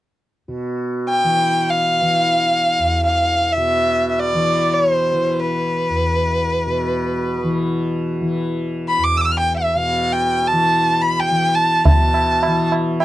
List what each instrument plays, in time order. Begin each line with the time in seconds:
0.48 tanpura B2
1.09 violin G5
1.24 tanpura E3
1.70 violin F5
2.01 tanpura E3
2.79 tanpura E2
3.05 violin F5
3.52 violin E5
3.57 tanpura B2
4.09 violin E5
4.19 violin D5
4.34 tanpura E3
4.74 violin C#5
4.93 violin C5
5.13 tanpura E3
5.39 violin B4
5.89 tanpura E2
6.66 tanpura B2
7.44 tanpura E3
8.21 tanpura E3
8.88 violin B5
8.98 tanpura E2
9.03 violin D6
9.17 violin D6 E6
9.25 violin E6
9.31 violin F6
9.39 violin G5
9.57 violin E5
9.76 tanpura B2, violin F5
10.12 violin G5
10.48 violin A5
10.53 tanpura E3
11.02 violin B5
11.20 violin G5
11.31 tanpura E3
11.55 violin A5
11.85 tanpura B2, violin A5, tabla tin, tabla ge
12.14 tabla na
12.43 tabla na
12.47 tanpura E3
12.72 tabla na
13.00 violin G5, tabla na